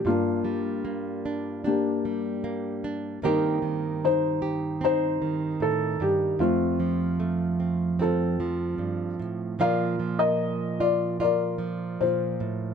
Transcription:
<<
  \new Staff \with { instrumentName = "Felt piano" } { \time 4/4 \key bes \major \tempo 4 = 75 << { f'2 g'4. r8 | bes'4 c''4 c''4 a'8 g'8 | f'2 a'4. r8 | f''8. ees''8. d''8 d''4 c''4 | } \\ { <bes d'>2 <bes d'>2 | ees'4 ees'4 ees'2 | <a c'>2 <c' f'>2 | <bes' d''>8. bes'4~ bes'16 <f' bes'>4 f'4 | } >> }
  \new Staff \with { instrumentName = "Nylon-string guitar" } { \clef bass \time 4/4 \key bes \major << { r4 bes8 d'8 d'4 bes8 d'8 | <ees bes c' g'>4. g'8 c'2~ | c'4 a8 c'8 c'2 | <f bes f'>4. f'8 f'2 | } \\ { g,8 g2 g4. | g,8 ees2 ees8 a,8 g,8 | f,8 f2 f8 g,8 a,8 | bes,8 f2 f8 bes,8 a,8 | } >> }
>>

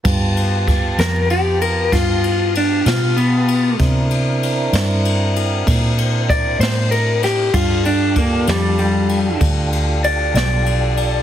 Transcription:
<<
  \new Staff \with { instrumentName = "Clean electric guitar" } { \time 12/8 \key g \mixolydian \tempo 4. = 64 r4. bes'8 g'8 bes'8 f'4 d'8 f'8 b4 | r1 d''8 c''8 bes'8 g'8 | f'8 d'8 bes8 g8 g4 r4 d''8 d''4. | }
  \new Staff \with { instrumentName = "Tonewheel organ" } { \time 12/8 \key g \mixolydian <b f' g' a''>1. | <c' d' e' bes'>1. | <d' f' g' a'>1. | }
  \new Staff \with { instrumentName = "Fingered electric bass" } { \clef bass \time 12/8 \key g \mixolydian g,4. f,4. g,4. b,4. | c4. g,4. bes,4. a,4. | g,4. f,4. d,4. b,,4. | }
  \new DrumStaff \with { instrumentName = "Drums" } \drummode { \time 12/8 <bd cymr>8 cymr8 <bd cymr>8 <cymr sn>8 cymr8 cymr8 <bd cymr sn>8 cymr8 cymr8 <cymr sn>8 cymr8 cymr8 | <bd cymr>8 cymr8 cymr8 <cymr sn>8 cymr8 cymr8 <bd cymr>8 cymr8 <bd cymr>8 <cymr sn>8 cymr8 <cymr sn>8 | <bd cymr>8 cymr8 <bd cymr>8 <cymr sn>8 cymr8 cymr8 <bd cymr>8 cymr8 cymr8 <cymr sn>8 cymr8 cymr8 | }
>>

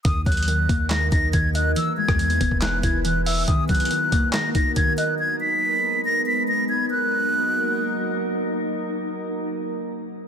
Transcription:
<<
  \new Staff \with { instrumentName = "Flute" } { \time 4/4 \key ees \phrygian \tempo 4 = 140 ees'''8 ges'''4. bes'''8 bes'''8 aes'''8 ges'''8 | e'''8 gis'''4. ges'''8 gis'''8 ges'''8 e'''8 | ees'''8 ges'''4. bes'''8 bes'''8 aes'''8 ges'''8 | aes'''8 ces''''4. bes'''8 ces''''8 bes'''8 aes'''8 |
ges'''2. r4 | r1 | }
  \new Staff \with { instrumentName = "Ambient pad" } { \time 4/4 \key ees \phrygian << { <ees' bes'>1 | <e' b'>1 | <ees' bes'>1~ | <ees' bes'>1 |
<ges bes ees' bes'>1~ | <ges bes ees' bes'>1 | } \\ { <ges bes>1 | <gis b>1 | <ges bes>1 | <aes ces'>1 |
r1 | r1 | } >> }
  \new Staff \with { instrumentName = "Synth pluck" } { \clef bass \time 4/4 \key ees \phrygian ees8 ges8 ees8 bes8 ees8 ees'8 ees8 ees''8 | e8 gis8 e8 b8 e8 e'8 e8 e''8 | ees8 ges8 ees8 bes8 ees8 ees'8 ees8 ees''8 | r1 |
r1 | r1 | }
  \new Staff \with { instrumentName = "808-style bass" } { \clef bass \time 4/4 \key ees \phrygian ees,8 ees,4 ees,4 ees,8 ees,4 | r8. e,8. e,,4 e,,4. | r1 | r1 |
r1 | r1 | }
  \new DrumStaff \with { instrumentName = "Drums" } \drummode { \time 4/4 <hh bd>8 <hh bd>32 hh32 hh32 hh32 hh8 <hh bd>8 <hc hh sn>8 <hh bd>8 <hh bd>8 hh8 | hh8. <bd ss>16 hh16 hh16 <hh bd>16 bd16 <hc hh sn>8 <hh bd>8 hh8 hho8 | <hh bd>8 <hh bd>32 hh32 hh32 hh32 hh8 <hh bd>8 <hc hh sn>8 <hh bd>8 <hh bd>8 hh8 | r4 r4 r4 r4 |
r4 r4 r4 r4 | r4 r4 r4 r4 | }
>>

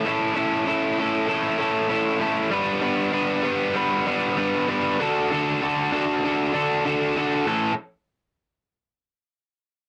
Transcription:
\new Staff \with { instrumentName = "Overdriven electric guitar" } { \time 4/4 \key a \mixolydian \tempo 4 = 97 <a, a cis' e' a'>8 <a, a cis' e' a'>8 <a, a cis' e' a'>8 <a, a cis' e' a'>8 <a, a cis' e' a'>8 <a, a cis' e' a'>8 <a, a cis' e' a'>8 <a, a cis' e' a'>8 | <g b d' b'>8 <g b d' b'>8 <g b d' b'>8 <g b d' b'>8 <g b d' b'>8 <g b d' b'>8 <g b d' b'>8 <g b d' b'>8 | <d d' fis' a'>8 <d d' fis' a'>8 <d d' fis' a'>8 <d d' fis' a'>8 <d d' fis' a'>8 <d d' fis' a'>8 <d d' fis' a'>8 <d d' fis' a'>8 | <a, e a cis' a'>8 r2. r8 | }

